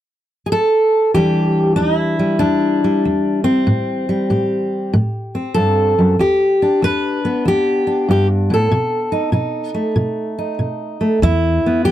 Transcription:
0.46 0.51 G#4 medium
0.52 1.10 A4 medium
1.14 1.73 E2 medium
1.14 4.66 E3 soft
1.14 2.19 G3 soft
1.14 2.38 D4 soft
1.14 1.76 G4 medium
1.76 2.36 E2 medium
1.76 1.96 D#4 medium
1.96 3.02 E4 medium
2.19 2.84 G3 soft
2.39 2.99 E2 medium
2.39 3.44 D4 medium
2.84 4.08 G3 soft
3.05 3.63 E2 medium
3.44 4.92 C4 medium
3.67 4.25 A2 medium
4.09 4.96 G3 soft
4.30 4.88 A2 medium
4.30 5.54 G4 soft
4.93 5.51 A2 medium
5.35 6.16 C4 soft
5.54 5.97 G2 medium
5.54 6.17 A4 medium
5.99 6.19 F#2 medium
6.19 6.77 E2 medium
6.19 6.82 G4 medium
6.62 7.86 D4 soft
6.82 7.40 E2 medium
6.82 7.45 B4 loud
7.25 9.74 B3 soft
7.45 8.03 E2 medium
7.45 8.09 G4 medium
7.87 8.68 D4 soft
8.09 8.49 G2 medium
8.09 8.27 G4 medium
8.50 8.70 A2 medium
8.50 11.23 A4 medium
8.72 9.29 B2 medium
9.12 9.32 D#4 soft
9.32 9.91 B2 medium
9.32 10.37 D#4 soft
9.74 11.00 A3 soft
9.96 10.54 B2 medium
10.38 11.19 D#4 soft
10.59 11.17 B2 medium
11.01 11.19 A3 soft
11.22 11.80 E2 medium
11.22 11.57 E2 medium
11.22 11.85 E4 medium
11.66 11.91 B3 soft
11.85 11.91 E2 medium
11.85 11.91 G4 loud

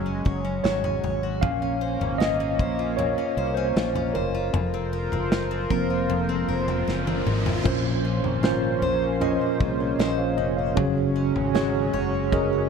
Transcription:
0.00 0.22 F#1 medium
0.00 1.38 F#3 soft
0.00 1.40 F#3 medium
0.00 1.42 F#3 medium
0.00 1.39 G#3 soft
0.00 1.40 G#3 medium
0.00 1.39 C#4 medium
0.00 1.40 C#4 medium
0.00 0.63 F#4 medium
0.00 0.21 C#5 medium
0.00 0.25 C#5 medium
0.06 0.44 C#4 medium
0.25 0.62 F#1 medium
0.25 1.03 C#5 medium
0.25 kick medium
0.45 0.84 C#4 medium
0.64 1.01 G#1 medium
0.64 1.22 F#4 medium
0.64 1.44 C#5 medium
0.64 snare loud
0.84 1.62 C#4 medium
0.84 floor tom medium
1.04 1.43 G#1 medium
1.04 1.81 C#5 medium
1.04 floor tom medium
1.23 1.50 F#4 medium
1.41 1.97 A#1 loud
1.41 2.97 A#2 medium
1.41 4.50 A#3 soft
1.41 4.51 A#3 medium
1.41 4.50 C#4 medium
1.41 4.51 C#4 medium
1.41 2.22 F5 medium
1.41 kick loud
1.41 floor tom medium
1.62 2.00 C#4 medium
1.81 2.59 C5 medium
2.01 2.59 G#1 medium
2.01 2.39 C#4 medium
2.01 floor tom medium
2.18 2.79 F4 medium
2.18 2.93 D#5 loud
2.18 snare loud
2.40 3.17 C#4 medium
2.59 3.14 A#1 medium
2.59 3.37 C5 medium
2.59 kick medium
2.59 floor tom medium
2.79 3.76 F4 medium
2.97 4.54 A#2 medium
2.97 3.52 C#5 medium
2.97 floor tom medium
3.18 3.56 C#4 medium
3.37 3.73 C2 medium
3.37 4.14 C5 medium
3.54 3.94 C#4 medium
3.54 4.16 C5 medium
3.76 4.12 A#1 medium
3.76 4.34 F4 medium
3.76 snare loud
3.95 4.62 C#4 medium
3.95 floor tom medium
4.14 4.51 F#1 medium
4.14 4.88 A#4 medium
4.14 4.93 C5 medium
4.14 floor tom medium
4.35 5.32 F4 medium
4.52 5.09 F1 loud
4.52 6.08 F2 medium
4.52 7.62 F3 medium
4.52 7.62 F4 medium
4.52 7.62 A#4 medium
4.52 7.62 C5 medium
4.52 floor tom medium
4.52 riser medium
4.74 5.12 C4 medium
4.93 5.70 A#4 medium
5.12 5.67 F#1 medium
5.12 5.51 C4 medium
5.12 floor tom medium
5.32 5.90 F4 medium
5.32 snare loud
5.51 6.29 C4 medium
5.70 6.45 F1 medium
5.70 6.22 F3 medium
5.70 6.22 A#3 soft
5.70 6.23 C4 medium
5.70 6.48 A#4 medium
5.70 kick medium
5.70 floor tom medium
5.90 6.87 F4 medium
6.10 7.73 F2 medium
6.10 floor tom medium
6.29 6.68 C4 medium
6.49 6.85 F1 medium
6.49 7.26 A#4 medium
6.68 7.07 C4 medium
6.68 floor tom medium
6.87 7.24 F#1 medium
6.87 7.46 F4 medium
6.87 snare medium
7.07 8.04 C4 medium
7.07 high tom medium
7.26 7.63 G#1 medium
7.26 8.82 A#4 medium
7.26 mid tom medium
7.46 8.43 F4 medium
7.46 floor tom medium
7.64 8.23 A#1 medium
7.64 8.78 A#2 medium
7.64 10.76 A#2 medium
7.64 8.78 F3 medium
7.64 10.74 A#3 medium
7.64 8.39 C#4 medium
7.64 10.74 C#4 medium
7.64 8.39 F4 medium
7.64 8.40 A#4 medium
7.64 10.74 C5 medium
7.64 8.40 C5 medium
7.64 kick loud
7.64 floor tom loud
7.64 crash medium
8.05 9.21 C#4 medium
8.23 8.78 G#1 medium
8.23 floor tom medium
8.43 9.17 C#4 medium
8.43 9.59 F4 medium
8.43 9.17 F4 medium
8.43 9.18 A#4 medium
8.43 9.18 C5 medium
8.43 snare loud
8.82 9.37 A#1 loud
8.82 9.98 C5 medium
8.82 floor tom medium
9.20 9.95 C#4 medium
9.20 10.37 C#4 medium
9.20 9.95 F4 medium
9.20 9.60 A#4 medium
9.20 9.61 D#5 medium
9.20 floor tom medium
9.60 9.97 C2 medium
9.60 10.85 F4 medium
9.60 9.79 G#4 soft
9.60 9.79 C5 medium
9.60 kick medium
9.79 9.98 A#4 medium
9.79 9.98 C#5 medium
9.99 10.35 A#1 medium
9.99 10.85 C5 medium
9.99 10.18 C5 medium
9.99 10.18 D#5 medium
9.99 snare loud
10.18 10.37 C#5 medium
10.18 10.37 F5 medium
10.37 10.74 F1 medium
10.37 11.15 C#4 medium
10.37 10.57 C5 soft
10.37 10.56 D#5 medium
10.57 10.76 C#5 soft
10.57 10.94 F5 medium
10.75 11.32 F#1 loud
10.75 11.90 C#3 medium
10.75 12.69 F#3 medium
10.75 12.69 G#3 medium
10.75 11.50 C#4 medium
10.75 12.69 C#4 medium
10.75 11.51 F#4 medium
10.75 11.51 G#4 medium
10.75 11.51 C#5 medium
10.75 kick loud
10.75 floor tom loud
11.16 12.32 C#4 medium
11.36 11.91 G#1 medium
11.36 floor tom medium
11.54 12.29 C#4 medium
11.54 12.29 F#4 medium
11.54 12.69 F#4 medium
11.54 12.29 G#4 medium
11.54 11.93 C#5 loud
11.54 snare loud
11.93 12.68 F#1 loud
11.93 12.69 C#5 medium
11.93 12.30 C#5 medium
11.93 floor tom medium
12.32 12.69 C#4 medium
12.32 12.69 F#4 medium
12.32 12.69 G#4 medium
12.32 12.69 A#4 medium
12.32 12.69 D#5 medium
12.32 kick medium
12.32 floor tom medium

